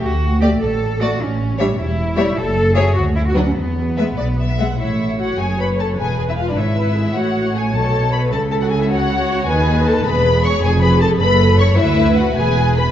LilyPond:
<<
  \new Staff \with { instrumentName = "Violin section" } { \time 6/8 \key a \mixolydian \tempo 4. = 103 r4 d''16 r4 r16 d''16 r16 | r4 e''16 r4 r16 e''16 r16 | \key a \major r4 e''16 r4 r16 fis''16 r16 | r4 e''16 r4 r16 e''16 r16 |
e''4 fis''8 gis''8 b''8 a''8 | gis''8 gis''16 e''16 f''16 d''16 e''4. | fis''4 gis''8 a''4 b''8 | a''8 a''16 fis''16 gis''16 e''16 fis''4. |
gis''4 a''8 b''4 cis'''8 | aes''8 ces'''8 a''8 b''4 cis'''8 | e''4 fis''8 gis''4 b''8 | }
  \new Staff \with { instrumentName = "Viola section" } { \time 6/8 \key a \mixolydian r4 a16 r4 r16 a16 r16 | r4 g16 r4 r16 g16 r16 | \key a \major r4 fis16 r4 r16 fis16 r16 | r4 gis16 r4 r16 gis16 r16 |
cis''2. | b'4. cis''8 b'8 gis'8 | cis''2. | a'4. cis''4. |
b'4. gis'4.~ | gis'4. a'4. | b'4. b'4. | }
  \new Staff \with { instrumentName = "Violin section" } { \time 6/8 \key a \mixolydian r4 d''16 r4 r16 d''16 r16 | r4 cis''16 r4 r16 cis''16 r16 | \key a \major r4 cis''16 r4 r16 b'16 r16 | r4 b'16 r16 d''8 e''8 fis''8 |
e'4 fis'8 gis'8 b'8 a'8 | gis'8 gis'16 e'16 f'16 d'16 e'4. | fis'4 gis'8 a'4 b'8 | a'8 a'16 fis'16 gis'16 e'16 fis'4. |
gis'4 a'8 b'4 cis''8 | aes'8 ces''8 a'8 b'4 cis''8 | e'4 fis'8 gis'4 b'8 | }
  \new Staff \with { instrumentName = "Cello section" } { \time 6/8 \key a \mixolydian fis'4 g'8 a'4 fis'8 | cis'4 d'8 e'4. | \key a \major a'4 gis'8 fis'8 e'16 fis'16 d'16 cis'16 | b2~ b8 r8 |
a,4. fis,4. | e,4. gis,4. | a,4. b,4. | cis2. |
dis4. e,4. | f,4. fis,4. | d,4. e,4. | }
  \new Staff \with { instrumentName = "Double bass section" } { \clef bass \time 6/8 \key a \mixolydian d,4. a,,4. | a,,4. e,,4. | \key a \major fis,,4. d,4. | e,4. b,,4. |
a,,4. fis,,4. | e,,4. gis,,4. | a,,4. b,,4. | cis,2. |
dis,4. e,,4. | f,,4. fis,,4. | d,4. e,,4. | }
>>